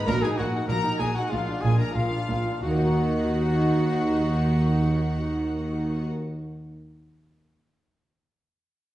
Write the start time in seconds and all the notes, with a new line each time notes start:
0.04 A#2 A#3 D#4 F#4 A#4 A#5
0.08 A#1 A#2
0.22 D#4 G#4 G#5
0.38 A#1 A#2 F#4 F#5
0.54 D#4
0.68 A#1 A#2 F#4 A#4 A#5
0.84 D#4
0.99 A#1 A#2 F#4 G#4 G#5
1.14 D#4 F#4 F#5
1.29 A#1 A#2 G#3 D4 F4 F5
1.34 A#2
1.48 D4
1.61 A#1 A#2 F4 G#4 G#5
1.79 D4 A#4 A#5
1.95 A#1 A#2 F4 F5
2.12 D4
2.29 A#1 A#2 F4
2.46 D4
2.62 D#2 D#3 D#4 F#4 F#5
2.71 A#3
2.78 D#4
2.85 F#4
2.92 D#5